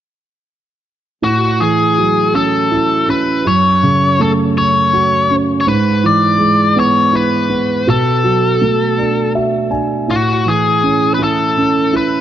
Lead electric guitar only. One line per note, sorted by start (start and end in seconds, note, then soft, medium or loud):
1.24 1.61 F#4 medium
1.60 2.35 G#4 medium
2.35 3.10 A4 medium
3.10 3.47 B4 medium
3.47 4.22 C#5 medium
4.21 4.31 A4 medium
4.58 5.35 C#5 medium
5.61 5.66 C#5 medium
5.68 6.05 B4 medium
6.06 6.79 D5 medium
6.79 7.15 C#5 medium
7.15 7.89 B4 medium
7.90 9.32 A4 medium
10.11 10.48 F#4 medium
10.48 11.14 G#4 medium
11.14 11.21 B4 soft
11.23 11.96 A4 medium
11.97 12.21 B4 medium